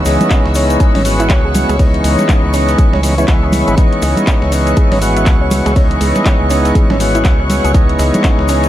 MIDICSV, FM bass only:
0, 0, Header, 1, 2, 480
1, 0, Start_track
1, 0, Key_signature, 4, "minor"
1, 0, Tempo, 495868
1, 1737, Time_signature, 4, 2, 24, 8
1, 8409, End_track
2, 0, Start_track
2, 0, Title_t, "FM bass"
2, 0, Program_c, 0, 39
2, 56, Note_on_c, 0, 37, 103
2, 175, Note_off_c, 0, 37, 0
2, 440, Note_on_c, 0, 37, 86
2, 750, Note_off_c, 0, 37, 0
2, 920, Note_on_c, 0, 32, 110
2, 1257, Note_on_c, 0, 37, 94
2, 1271, Note_off_c, 0, 32, 0
2, 1600, Note_off_c, 0, 37, 0
2, 1641, Note_on_c, 0, 37, 89
2, 1950, Note_off_c, 0, 37, 0
2, 1977, Note_on_c, 0, 37, 107
2, 2096, Note_off_c, 0, 37, 0
2, 2360, Note_on_c, 0, 37, 88
2, 2670, Note_off_c, 0, 37, 0
2, 2840, Note_on_c, 0, 37, 101
2, 3150, Note_off_c, 0, 37, 0
2, 3176, Note_on_c, 0, 37, 93
2, 3520, Note_off_c, 0, 37, 0
2, 3561, Note_on_c, 0, 32, 99
2, 3640, Note_off_c, 0, 32, 0
2, 3897, Note_on_c, 0, 37, 105
2, 4015, Note_off_c, 0, 37, 0
2, 4280, Note_on_c, 0, 37, 86
2, 4590, Note_off_c, 0, 37, 0
2, 4761, Note_on_c, 0, 32, 105
2, 5097, Note_on_c, 0, 37, 100
2, 5111, Note_off_c, 0, 32, 0
2, 5440, Note_off_c, 0, 37, 0
2, 5480, Note_on_c, 0, 37, 93
2, 5790, Note_off_c, 0, 37, 0
2, 5816, Note_on_c, 0, 37, 101
2, 5935, Note_off_c, 0, 37, 0
2, 6200, Note_on_c, 0, 37, 86
2, 6510, Note_off_c, 0, 37, 0
2, 6680, Note_on_c, 0, 32, 107
2, 7017, Note_on_c, 0, 37, 95
2, 7031, Note_off_c, 0, 32, 0
2, 7360, Note_off_c, 0, 37, 0
2, 7400, Note_on_c, 0, 37, 94
2, 7710, Note_off_c, 0, 37, 0
2, 7736, Note_on_c, 0, 37, 108
2, 7855, Note_off_c, 0, 37, 0
2, 8120, Note_on_c, 0, 37, 88
2, 8409, Note_off_c, 0, 37, 0
2, 8409, End_track
0, 0, End_of_file